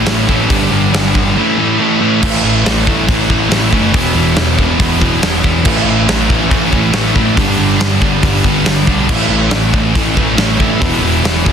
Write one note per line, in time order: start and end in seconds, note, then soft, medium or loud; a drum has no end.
0.00 0.27 A2 loud
0.00 0.28 E3 loud
0.00 0.28 A3 loud
0.00 0.28 C#4 loud
0.00 0.27 E4 loud
0.06 0.25 A1 medium
0.06 0.27 A2 medium
0.06 0.28 E3 medium
0.06 0.28 A3 loud
0.06 snare loud
0.06 open hi-hat medium
0.28 0.49 A2 loud
0.28 0.47 A2 medium
0.28 0.49 A2 medium
0.28 0.50 E3 medium
0.28 0.49 E3 medium
0.28 0.50 A3 loud
0.28 0.50 A3 medium
0.28 0.49 C#4 medium
0.28 0.49 E4 loud
0.28 kick medium
0.49 0.69 G1 loud
0.49 1.35 G2 medium
0.49 0.69 G2 loud
0.49 0.70 D3 loud
0.49 1.35 D3 loud
0.49 1.35 G3 loud
0.49 0.70 G3 loud
0.49 1.36 B3 loud
0.49 1.36 D4 loud
0.49 kick loud
0.49 open hi-hat medium
0.71 0.90 G1 medium
0.71 0.91 G2 medium
0.71 0.92 D3 loud
0.71 0.92 G3 loud
0.92 1.11 G1 medium
0.92 1.14 G2 medium
0.92 1.15 D3 loud
0.92 1.15 G3 loud
0.92 snare loud
0.92 open hi-hat medium
1.15 1.33 G1 medium
1.15 1.35 G2 medium
1.15 1.35 D3 medium
1.15 1.36 G3 medium
1.15 kick medium
1.36 2.21 A2 medium
1.36 1.56 A2 loud
1.36 1.57 E3 medium
1.36 2.22 E3 medium
1.36 1.57 A3 loud
1.36 2.22 A3 loud
1.36 2.23 C#4 loud
1.36 2.23 E4 loud
1.58 1.78 A2 medium
1.58 1.79 E3 medium
1.58 1.79 A3 loud
1.79 2.00 A2 medium
1.79 2.00 E3 medium
1.79 2.00 A3 medium
2.01 2.20 A2 medium
2.01 2.21 E3 medium
2.01 2.21 A3 medium
2.21 2.41 A1 loud
2.21 2.43 A2 loud
2.21 3.72 A2 medium
2.21 2.44 E3 loud
2.21 3.75 E3 loud
2.21 2.44 A3 loud
2.21 3.73 A3 medium
2.21 3.73 C#4 loud
2.21 kick loud
2.21 crash loud
2.26 3.73 E4 loud
2.43 2.62 A1 medium
2.43 2.64 A2 medium
2.43 2.65 E3 loud
2.43 2.65 A3 medium
2.65 2.84 A1 medium
2.65 2.85 A2 medium
2.65 2.86 E3 medium
2.65 2.86 A3 loud
2.65 snare loud
2.65 open hi-hat medium
2.86 3.05 A1 medium
2.86 3.07 A2 medium
2.86 3.08 E3 medium
2.86 3.08 A3 medium
2.86 kick medium
3.08 3.27 A1 loud
3.08 3.27 A2 medium
3.08 3.29 E3 loud
3.08 3.28 A3 loud
3.08 kick loud
3.08 open hi-hat medium
3.29 3.48 A1 loud
3.29 3.48 A2 medium
3.29 3.49 E3 loud
3.29 3.49 A3 loud
3.29 kick medium
3.49 3.69 A1 medium
3.49 3.69 A2 medium
3.49 3.71 E3 medium
3.49 3.70 A3 loud
3.49 snare loud
3.49 open hi-hat medium
3.71 3.91 F#1 loud
3.71 3.92 A2 medium
3.71 3.94 E3 medium
3.71 3.93 A3 loud
3.71 3.94 C#4 medium
3.71 3.97 E4 loud
3.71 kick medium
3.75 3.95 A2 medium
3.75 3.93 E3 medium
3.75 3.94 A3 medium
3.93 4.13 E1 loud
3.93 4.14 E2 loud
3.93 4.14 B2 loud
3.93 5.43 E3 medium
3.93 4.15 E3 loud
3.93 5.44 G#3 loud
3.93 5.44 B3 loud
3.93 5.42 E4 loud
3.93 kick loud
3.93 open hi-hat medium
4.15 4.34 E1 medium
4.15 4.34 E2 medium
4.15 4.35 B2 loud
4.15 4.36 E3 loud
4.35 4.55 E1 loud
4.35 4.55 E2 loud
4.35 4.56 B2 loud
4.35 4.58 E3 loud
4.35 snare loud
4.35 open hi-hat medium
4.57 4.77 E1 loud
4.57 4.77 E2 medium
4.57 4.78 B2 medium
4.57 4.78 E3 medium
4.57 kick medium
4.78 4.99 E1 loud
4.78 4.99 E2 loud
4.78 4.99 B2 loud
4.78 5.00 E3 loud
4.78 kick loud
4.78 open hi-hat medium
5.00 5.20 E1 loud
5.00 5.20 E2 loud
5.00 5.20 B2 loud
5.00 5.21 E3 loud
5.00 kick medium
5.21 5.41 E1 loud
5.21 5.42 E2 medium
5.21 5.42 B2 medium
5.21 5.43 E3 loud
5.21 snare loud
5.21 open hi-hat medium
5.43 5.64 E2 medium
5.43 5.66 E2 medium
5.43 5.64 B2 loud
5.43 5.63 E3 loud
5.43 5.66 G#3 medium
5.43 5.66 B3 medium
5.43 5.65 E4 medium
5.43 kick medium
5.47 5.66 E3 medium
5.64 5.84 A1 medium
5.64 5.84 A2 loud
5.64 7.15 A2 medium
5.64 5.84 E3 loud
5.64 7.16 E3 loud
5.64 5.85 A3 loud
5.64 7.16 A3 medium
5.64 kick loud
5.64 crash loud
5.68 7.16 C#4 loud
5.68 7.15 E4 loud
5.85 6.05 A1 medium
5.85 6.06 A2 medium
5.85 6.07 E3 loud
5.85 6.07 A3 loud
6.07 6.26 A1 loud
6.07 6.27 A2 medium
6.07 6.28 E3 loud
6.07 6.28 A3 loud
6.07 snare loud
6.07 open hi-hat medium
6.28 6.49 A1 medium
6.28 6.49 A2 medium
6.28 6.50 E3 medium
6.28 6.50 A3 loud
6.28 kick medium
6.50 6.70 A1 loud
6.50 6.70 A2 loud
6.50 6.70 E3 loud
6.50 6.71 A3 loud
6.50 kick loud
6.50 open hi-hat medium
6.71 6.91 A1 loud
6.71 6.92 A2 medium
6.71 6.93 E3 loud
6.71 6.93 A3 loud
6.71 kick medium
6.93 7.12 A1 medium
6.93 7.14 A2 medium
6.93 7.14 E3 loud
6.93 7.14 A3 loud
6.93 snare loud
6.93 open hi-hat medium
7.15 7.36 A2 medium
7.15 7.34 A2 loud
7.15 7.36 E3 medium
7.15 7.38 E3 medium
7.15 7.36 A3 loud
7.15 7.38 A3 medium
7.15 7.37 C#4 medium
7.15 7.37 E4 loud
7.15 kick medium
7.20 7.37 A2 medium
7.36 7.56 G1 loud
7.36 7.58 G2 loud
7.36 8.87 G2 loud
7.36 7.58 D3 loud
7.36 8.87 D3 loud
7.36 7.59 G3 loud
7.36 8.88 G3 loud
7.36 8.88 B3 loud
7.36 8.87 D4 loud
7.36 kick loud
7.36 open hi-hat medium
7.58 7.77 G1 medium
7.58 7.78 G2 medium
7.58 7.78 D3 medium
7.58 7.79 G3 loud
7.79 7.98 G1 medium
7.79 7.99 G2 medium
7.79 8.00 D3 loud
7.79 8.00 G3 medium
7.79 snare loud
7.79 open hi-hat medium
8.00 8.20 G1 loud
8.00 8.21 G2 medium
8.00 8.22 D3 medium
8.00 8.22 G3 medium
8.00 kick medium
8.22 8.41 G1 medium
8.22 8.43 G2 medium
8.22 8.43 D3 loud
8.22 8.44 G3 loud
8.22 kick loud
8.22 open hi-hat medium
8.44 8.63 G1 loud
8.44 8.65 G2 medium
8.44 8.66 D3 medium
8.44 8.66 G3 loud
8.44 kick medium
8.64 8.84 G1 loud
8.64 8.86 G2 medium
8.64 8.87 D3 medium
8.64 8.87 G3 loud
8.64 snare loud
8.64 open hi-hat medium
8.87 9.06 B1 medium
8.87 9.08 G2 loud
8.87 9.08 D3 medium
8.87 9.09 D3 medium
8.87 9.09 G3 loud
8.87 9.09 G3 medium
8.87 9.09 B3 medium
8.87 9.08 D4 medium
8.87 kick medium
8.91 9.08 G2 medium
9.08 9.28 A1 medium
9.08 10.58 A2 loud
9.08 9.29 A2 loud
9.08 10.61 E3 medium
9.08 9.30 E3 loud
9.08 9.30 A3 loud
9.08 10.59 A3 medium
9.08 10.58 C#4 loud
9.08 10.58 E4 loud
9.08 kick loud
9.08 crash loud
9.29 9.48 A1 medium
9.29 9.51 A2 medium
9.29 9.52 E3 medium
9.29 9.51 A3 medium
9.50 9.70 A1 medium
9.50 9.73 A2 loud
9.50 9.74 E3 loud
9.50 9.74 A3 loud
9.50 snare loud
9.50 open hi-hat medium
9.74 9.92 A1 medium
9.74 9.94 A2 medium
9.74 9.95 E3 loud
9.74 9.95 A3 medium
9.74 kick medium
9.95 10.14 A1 loud
9.95 10.16 A2 medium
9.95 10.17 E3 loud
9.95 10.16 A3 loud
9.95 kick loud
9.95 open hi-hat medium
10.17 10.35 A1 loud
10.17 10.37 A2 loud
10.17 10.38 E3 medium
10.17 10.38 A3 loud
10.17 kick medium
10.38 10.57 A1 loud
10.38 10.58 A2 medium
10.38 10.60 E3 medium
10.38 10.59 A3 loud
10.38 snare loud
10.38 open hi-hat medium
10.59 10.80 A2 medium
10.59 10.78 A2 loud
10.59 10.81 A2 medium
10.59 10.81 E3 medium
10.59 10.80 A3 loud
10.59 10.81 A3 medium
10.59 10.80 C#4 medium
10.59 10.84 E4 loud
10.59 kick medium
10.80 11.00 E1 loud
10.80 11.01 E2 loud
10.80 11.01 B2 loud
10.80 11.53 E3 loud
10.80 11.02 E3 loud
10.80 11.53 G#3 loud
10.80 11.53 B3 loud
10.80 kick loud
10.80 open hi-hat medium
10.85 11.53 E4 loud
11.02 11.21 E1 medium
11.02 11.22 E2 loud
11.02 11.23 B2 loud
11.02 11.24 E3 medium
11.23 11.42 E1 medium
11.23 11.44 E2 medium
11.23 11.44 B2 loud
11.23 11.45 E3 loud
11.23 snare loud
11.23 open hi-hat medium
11.45 11.53 E1 medium
11.45 11.53 E2 medium
11.45 11.53 B2 medium
11.45 11.53 E3 medium
11.45 kick medium